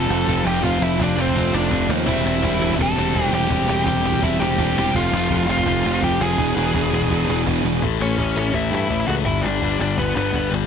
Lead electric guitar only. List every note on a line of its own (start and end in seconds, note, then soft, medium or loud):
0.00 0.42 A4 medium
0.00 0.48 A5 loud
0.45 0.62 G4 loud
0.45 0.64 G5 loud
0.62 0.79 F4 medium
0.62 0.83 F5 loud
0.82 0.98 E4 medium
0.82 1.00 E5 loud
1.02 1.17 D4 medium
1.02 1.20 D5 loud
1.20 1.52 C4 medium
1.20 1.56 C5 loud
1.54 1.87 D4 medium
1.54 1.88 D5 medium
2.07 2.75 E4 medium
2.07 2.76 E5 loud
2.81 3.30 A4 medium
2.81 3.24 A5 loud
3.24 3.35 G5 loud
3.34 3.83 G4 medium
3.34 3.85 G5 loud
3.86 4.19 G4 medium
3.86 4.23 G5 loud
4.23 4.39 E4 medium
4.23 4.40 E5 loud
4.39 4.90 G4 medium
4.39 4.96 G5 loud
4.96 5.45 F4 medium
4.96 5.50 F5 loud
5.50 5.99 F4 medium
5.50 6.05 F5 loud
6.03 6.20 G4 medium
6.03 6.20 G5 medium
6.22 7.43 G#4 medium
6.22 7.43 G#5 loud
8.02 8.52 C#4 medium
8.02 8.56 C#5 loud
8.55 9.05 E4 medium
8.55 9.07 E5 loud
9.08 9.13 F#4 medium
9.08 9.13 F#5 loud
9.25 9.43 E4 medium
9.25 9.44 E5 loud
9.41 9.76 D4 medium
9.41 9.80 D5 loud
9.81 9.97 D4 medium
9.81 9.99 D5 loud
9.97 10.14 B3 medium
9.97 10.15 B4 loud
10.16 10.49 B3 medium
10.16 10.50 B4 medium